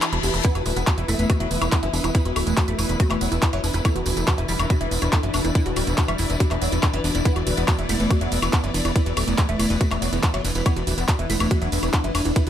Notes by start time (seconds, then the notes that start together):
Already playing: E3 E4 B4 A5, reverse cymbal
0.02 E4, clap, closed hi-hat, tambourine, high woodblock
0.13 E1 E4, closed hi-hat
0.23 E1 G4, open hi-hat, tambourine
0.34 E1 E4, closed hi-hat, tambourine
0.45 E3 B3 E4, kick, closed hi-hat
0.55 E1 E3 F#4, closed hi-hat, high woodblock
0.66 D1 E3 F#4, open hi-hat, tambourine
0.76 E1 B3, closed hi-hat, tambourine
0.87 E3 F#4, kick, clap, closed hi-hat, tambourine, high woodblock
0.94 E1 E3 E5, closed hi-hat
1.08 E1 A3 E4, open hi-hat, tambourine
1.19 E1 E3, closed hi-hat, tambourine
1.30 E3 F#4, kick, closed hi-hat, high woodblock
1.40 E1 F#3 E5, closed hi-hat
1.51 E1 E3, open hi-hat, tambourine
1.61 E1 E3 E4, closed hi-hat, tambourine, high woodblock
1.72 B3 E4, kick, clap, closed hi-hat, tambourine
1.83 F#1 E3 E5, closed hi-hat
1.93 E1 E3 D4, open hi-hat, tambourine
2.04 E1 E4, closed hi-hat, tambourine, high woodblock
2.15 E3 E4, kick, closed hi-hat, tambourine
2.25 E1 E3 F#4, closed hi-hat
2.36 D1 A3 F#4, open hi-hat, tambourine, high woodblock
2.47 E1 E3, closed hi-hat, tambourine
2.57 E3 F#4, kick, clap, closed hi-hat
2.68 E1 A3 E5, closed hi-hat
2.75 E1 E3 E4 D5, open hi-hat, tambourine, high woodblock
2.89 E1 E3, closed hi-hat, tambourine
3.00 A3 F#4, kick, closed hi-hat, tambourine
3.10 E1 E3 E5, clap, closed hi-hat, high woodblock
3.21 E1 F#3, open hi-hat, tambourine
3.32 E1 E3 E4, closed hi-hat, tambourine
3.42 E3 E4, kick, clap, closed hi-hat, tambourine
3.53 F#1 F#3 E5, closed hi-hat, high woodblock
3.64 E1 E3 D4, open hi-hat, tambourine
3.73 E1 E3 E4, closed hi-hat, tambourine
3.85 A3 D4 E4, kick, closed hi-hat, tambourine, high woodblock
3.96 E1 B2 F#4, closed hi-hat
4.06 D1 B2 F#4, open hi-hat, tambourine
4.17 E1 A3, closed hi-hat, tambourine
4.27 B2 F#4, kick, clap, closed hi-hat, high woodblock
4.38 E1 B2 E5, closed hi-hat
4.48 E1 G3 E4, open hi-hat, tambourine
4.59 E1 B2, closed hi-hat, tambourine, high woodblock
4.70 B2 F#4, kick, closed hi-hat, tambourine
4.81 E1 E3 E5, closed hi-hat
4.91 E1 B2, open hi-hat, tambourine
5.02 E1 B2 E4, closed hi-hat, tambourine, high woodblock
5.12 A3 E4, kick, clap, closed hi-hat, tambourine
5.23 F#1 B2 E5, closed hi-hat
5.33 E1 B2 D4, open hi-hat, tambourine, high woodblock
5.44 E1 E4, closed hi-hat, tambourine
5.55 B2 E4, kick, closed hi-hat, tambourine
5.66 E1 B2 F#4, closed hi-hat
5.76 D1 G3 F#4, open hi-hat, tambourine, high woodblock
5.87 E1 B2, closed hi-hat, tambourine
5.98 B2 F#4, kick, clap, closed hi-hat, tambourine
6.08 E1 G3 E5, closed hi-hat, high woodblock
6.18 E1 B2 E4, open hi-hat, tambourine
6.30 E1 B2, closed hi-hat, tambourine
6.40 G3 F#4, kick, closed hi-hat
6.51 E1 B2 E5, clap, closed hi-hat, high woodblock
6.61 E1 F#3, open hi-hat, tambourine
6.72 E1 B2 E4, closed hi-hat, tambourine
6.83 B2 E4, kick, clap, closed hi-hat, high woodblock
6.93 F#1 E3 E5, closed hi-hat
7.04 E1 B2 D4, open hi-hat, tambourine
7.15 E1 B2 E4, closed hi-hat, tambourine
7.25 B3 E4, kick, closed hi-hat
7.36 E1 E3 F#4, closed hi-hat, high woodblock
7.47 D1 E3 F#4, open hi-hat, ride, tambourine
7.57 E1 B3, closed hi-hat, tambourine
7.68 E3 F#4, kick, clap, closed hi-hat, tambourine, high woodblock
7.79 E1 E3 E5, closed hi-hat
7.89 E1 A3 E4, open hi-hat, ride, tambourine
8.00 E1 E3, closed hi-hat, tambourine
8.11 E3 F#4, kick, closed hi-hat, tambourine, high woodblock
8.21 E1 F#3 E5, closed hi-hat
8.32 E1 E3, open hi-hat, ride, tambourine
8.42 E1 E3 E4, closed hi-hat, tambourine, high woodblock
8.53 B3 E4, kick, clap, closed hi-hat, tambourine
8.64 F#1 E3 E5, closed hi-hat
8.74 E1 E3 D4, open hi-hat, ride, tambourine
8.85 E1 E4, closed hi-hat, tambourine, high woodblock
8.95 E3 E4, kick, closed hi-hat, tambourine
9.06 E1 E3 F#4, closed hi-hat
9.17 D1 A3 F#4, open hi-hat, ride, tambourine, high woodblock
9.28 E1 E3, closed hi-hat, tambourine
9.38 E3 F#4, kick, clap, closed hi-hat
9.49 E1 A3 E5, closed hi-hat
9.59 E1 E3 E4, open hi-hat, ride, tambourine, high woodblock
9.70 E1 E3, closed hi-hat, tambourine
9.81 A3 F#4, kick, closed hi-hat, tambourine
9.91 E1 E3 E5, clap, closed hi-hat, high woodblock
10.02 E1 F#3, open hi-hat, ride, tambourine
10.13 E1 E3 E4, closed hi-hat, tambourine
10.23 E3 E4, kick, clap, closed hi-hat, tambourine
10.34 F#1 F#3 E5, closed hi-hat, high woodblock
10.45 E1 E3 D4, open hi-hat, ride, tambourine
10.55 E1 E3 E4, closed hi-hat, tambourine
10.66 B3 D4 E4, kick, closed hi-hat, tambourine, high woodblock
10.76 E1 E3 F#4, closed hi-hat
10.87 D1 E3 F#4, open hi-hat, ride, tambourine
10.98 E1 B3, closed hi-hat, tambourine
11.08 E3 F#4, kick, clap, closed hi-hat, tambourine, high woodblock
11.19 E1 E3 E5, closed hi-hat
11.30 E1 A3 E4, open hi-hat, ride, tambourine
11.40 E1 E3, closed hi-hat, tambourine, high woodblock
11.51 E3 F#4, kick, closed hi-hat
11.62 E1 F#3 E5, closed hi-hat
11.72 E1 E3, open hi-hat, ride, tambourine
11.83 E1 E3 E4, closed hi-hat, tambourine, high woodblock
11.93 B3 E4, kick, clap, closed hi-hat, tambourine
12.04 F#1 E3 E5, closed hi-hat
12.15 E1 E3 D4, open hi-hat, ride, tambourine, high woodblock
12.25 E1 E4, closed hi-hat, tambourine
12.36 E3 E4, kick, closed hi-hat, tambourine
12.47 E1 E3 F#4, closed hi-hat